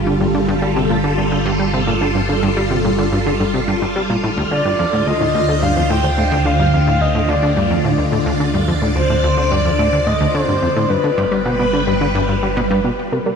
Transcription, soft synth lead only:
0, 0, Header, 1, 2, 480
1, 0, Start_track
1, 0, Tempo, 555556
1, 1738, Time_signature, 4, 2, 24, 8
1, 11540, End_track
2, 0, Start_track
2, 0, Title_t, "Soft synth lead"
2, 0, Program_c, 0, 80
2, 3900, Note_on_c, 0, 74, 92
2, 4379, Note_on_c, 0, 75, 102
2, 4392, Note_off_c, 0, 74, 0
2, 4858, Note_on_c, 0, 77, 98
2, 4871, Note_off_c, 0, 75, 0
2, 5096, Note_on_c, 0, 79, 111
2, 5109, Note_off_c, 0, 77, 0
2, 5578, Note_on_c, 0, 77, 104
2, 5591, Note_off_c, 0, 79, 0
2, 5814, Note_off_c, 0, 77, 0
2, 5819, Note_on_c, 0, 77, 96
2, 6059, Note_on_c, 0, 75, 86
2, 6072, Note_off_c, 0, 77, 0
2, 6299, Note_on_c, 0, 74, 84
2, 6312, Note_off_c, 0, 75, 0
2, 7019, Note_off_c, 0, 74, 0
2, 7738, Note_on_c, 0, 72, 102
2, 8217, Note_on_c, 0, 74, 111
2, 8230, Note_off_c, 0, 72, 0
2, 8696, Note_on_c, 0, 75, 105
2, 8709, Note_off_c, 0, 74, 0
2, 8936, Note_on_c, 0, 72, 104
2, 8949, Note_off_c, 0, 75, 0
2, 9414, Note_on_c, 0, 71, 98
2, 9427, Note_off_c, 0, 72, 0
2, 11096, Note_off_c, 0, 71, 0
2, 11540, End_track
0, 0, End_of_file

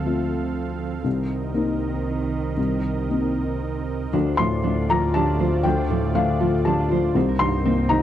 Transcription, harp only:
0, 0, Header, 1, 2, 480
1, 0, Start_track
1, 0, Tempo, 497512
1, 1017, Time_signature, 3, 2, 24, 8
1, 1982, Tempo, 516796
1, 4382, Tempo, 500000
1, 7632, End_track
2, 0, Start_track
2, 0, Title_t, "Harp"
2, 0, Program_c, 0, 46
2, 3910, Note_on_c, 0, 62, 94
2, 4037, Note_on_c, 0, 72, 60
2, 4153, Note_on_c, 0, 69, 64
2, 4368, Note_off_c, 0, 62, 0
2, 4379, Note_on_c, 0, 62, 82
2, 4612, Note_off_c, 0, 69, 0
2, 4624, Note_on_c, 0, 69, 60
2, 4743, Note_on_c, 0, 65, 58
2, 4856, Note_off_c, 0, 62, 0
2, 4868, Note_on_c, 0, 62, 91
2, 4972, Note_off_c, 0, 65, 0
2, 4984, Note_on_c, 0, 65, 64
2, 5101, Note_off_c, 0, 72, 0
2, 5112, Note_on_c, 0, 72, 67
2, 5339, Note_off_c, 0, 62, 0
2, 5350, Note_on_c, 0, 62, 91
2, 5456, Note_off_c, 0, 72, 0
2, 5468, Note_on_c, 0, 72, 64
2, 5582, Note_off_c, 0, 69, 0
2, 5594, Note_on_c, 0, 69, 61
2, 5822, Note_off_c, 0, 62, 0
2, 5833, Note_on_c, 0, 62, 90
2, 6067, Note_off_c, 0, 69, 0
2, 6078, Note_on_c, 0, 69, 60
2, 6199, Note_off_c, 0, 65, 0
2, 6210, Note_on_c, 0, 65, 62
2, 6321, Note_off_c, 0, 62, 0
2, 6332, Note_on_c, 0, 62, 94
2, 6441, Note_off_c, 0, 65, 0
2, 6453, Note_on_c, 0, 65, 65
2, 6555, Note_off_c, 0, 72, 0
2, 6567, Note_on_c, 0, 72, 71
2, 6797, Note_on_c, 0, 60, 93
2, 6814, Note_off_c, 0, 69, 0
2, 6821, Note_off_c, 0, 62, 0
2, 6821, Note_off_c, 0, 65, 0
2, 6923, Note_on_c, 0, 70, 69
2, 7046, Note_on_c, 0, 67, 62
2, 7265, Note_off_c, 0, 60, 0
2, 7276, Note_on_c, 0, 60, 97
2, 7500, Note_off_c, 0, 67, 0
2, 7511, Note_on_c, 0, 67, 63
2, 7632, Note_off_c, 0, 60, 0
2, 7632, Note_off_c, 0, 67, 0
2, 7632, Note_off_c, 0, 70, 0
2, 7632, Note_off_c, 0, 72, 0
2, 7632, End_track
0, 0, End_of_file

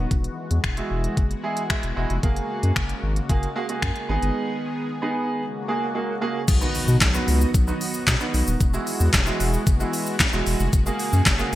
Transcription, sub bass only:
0, 0, Header, 1, 2, 480
1, 0, Start_track
1, 0, Key_signature, 5, "major"
1, 0, Tempo, 530973
1, 99, Time_signature, 4, 2, 24, 8
1, 10443, End_track
2, 0, Start_track
2, 0, Title_t, "Sub bass"
2, 0, Program_c, 0, 38
2, 100, Note_on_c, 0, 28, 103
2, 258, Note_off_c, 0, 28, 0
2, 459, Note_on_c, 0, 40, 86
2, 538, Note_off_c, 0, 40, 0
2, 578, Note_on_c, 0, 28, 93
2, 737, Note_off_c, 0, 28, 0
2, 819, Note_on_c, 0, 28, 93
2, 978, Note_off_c, 0, 28, 0
2, 1060, Note_on_c, 0, 30, 95
2, 1218, Note_off_c, 0, 30, 0
2, 1658, Note_on_c, 0, 28, 80
2, 1738, Note_off_c, 0, 28, 0
2, 1779, Note_on_c, 0, 28, 94
2, 1858, Note_off_c, 0, 28, 0
2, 1898, Note_on_c, 0, 29, 92
2, 1978, Note_off_c, 0, 29, 0
2, 2019, Note_on_c, 0, 30, 101
2, 2178, Note_off_c, 0, 30, 0
2, 2378, Note_on_c, 0, 42, 89
2, 2458, Note_off_c, 0, 42, 0
2, 2497, Note_on_c, 0, 30, 96
2, 2657, Note_off_c, 0, 30, 0
2, 2738, Note_on_c, 0, 32, 88
2, 2897, Note_off_c, 0, 32, 0
2, 2979, Note_on_c, 0, 30, 97
2, 3138, Note_off_c, 0, 30, 0
2, 3458, Note_on_c, 0, 42, 94
2, 3538, Note_off_c, 0, 42, 0
2, 3698, Note_on_c, 0, 32, 104
2, 3778, Note_off_c, 0, 32, 0
2, 3818, Note_on_c, 0, 31, 92
2, 3898, Note_off_c, 0, 31, 0
2, 5859, Note_on_c, 0, 35, 100
2, 6018, Note_off_c, 0, 35, 0
2, 6219, Note_on_c, 0, 47, 92
2, 6299, Note_off_c, 0, 47, 0
2, 6338, Note_on_c, 0, 35, 96
2, 6497, Note_off_c, 0, 35, 0
2, 6580, Note_on_c, 0, 37, 94
2, 6738, Note_off_c, 0, 37, 0
2, 6819, Note_on_c, 0, 35, 96
2, 6978, Note_off_c, 0, 35, 0
2, 7299, Note_on_c, 0, 47, 99
2, 7378, Note_off_c, 0, 47, 0
2, 7538, Note_on_c, 0, 35, 97
2, 7618, Note_off_c, 0, 35, 0
2, 7659, Note_on_c, 0, 27, 92
2, 7738, Note_off_c, 0, 27, 0
2, 7779, Note_on_c, 0, 28, 101
2, 7938, Note_off_c, 0, 28, 0
2, 8138, Note_on_c, 0, 40, 90
2, 8218, Note_off_c, 0, 40, 0
2, 8258, Note_on_c, 0, 28, 96
2, 8417, Note_off_c, 0, 28, 0
2, 8498, Note_on_c, 0, 28, 89
2, 8658, Note_off_c, 0, 28, 0
2, 8740, Note_on_c, 0, 30, 101
2, 8898, Note_off_c, 0, 30, 0
2, 9338, Note_on_c, 0, 28, 88
2, 9418, Note_off_c, 0, 28, 0
2, 9459, Note_on_c, 0, 28, 96
2, 9539, Note_off_c, 0, 28, 0
2, 9580, Note_on_c, 0, 29, 97
2, 9659, Note_off_c, 0, 29, 0
2, 9700, Note_on_c, 0, 30, 104
2, 9859, Note_off_c, 0, 30, 0
2, 10059, Note_on_c, 0, 42, 97
2, 10139, Note_off_c, 0, 42, 0
2, 10178, Note_on_c, 0, 30, 92
2, 10337, Note_off_c, 0, 30, 0
2, 10443, End_track
0, 0, End_of_file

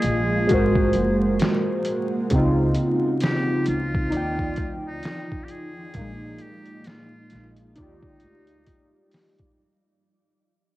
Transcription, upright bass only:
0, 0, Header, 1, 2, 480
1, 0, Start_track
1, 0, Key_signature, -3, "major"
1, 0, Tempo, 909091
1, 1219, Time_signature, 4, 2, 24, 8
1, 5682, End_track
2, 0, Start_track
2, 0, Title_t, "Upright bass"
2, 0, Program_c, 0, 32
2, 22, Note_on_c, 0, 34, 89
2, 244, Note_off_c, 0, 34, 0
2, 270, Note_on_c, 0, 32, 94
2, 488, Note_off_c, 0, 32, 0
2, 502, Note_on_c, 0, 30, 86
2, 723, Note_off_c, 0, 30, 0
2, 1221, Note_on_c, 0, 37, 104
2, 1443, Note_off_c, 0, 37, 0
2, 1942, Note_on_c, 0, 37, 86
2, 2164, Note_off_c, 0, 37, 0
2, 2181, Note_on_c, 0, 39, 98
2, 2403, Note_off_c, 0, 39, 0
2, 2418, Note_on_c, 0, 38, 81
2, 2641, Note_off_c, 0, 38, 0
2, 3143, Note_on_c, 0, 34, 92
2, 3364, Note_off_c, 0, 34, 0
2, 3866, Note_on_c, 0, 34, 87
2, 4086, Note_off_c, 0, 34, 0
2, 4109, Note_on_c, 0, 39, 98
2, 4327, Note_off_c, 0, 39, 0
2, 4344, Note_on_c, 0, 38, 77
2, 4565, Note_off_c, 0, 38, 0
2, 5682, End_track
0, 0, End_of_file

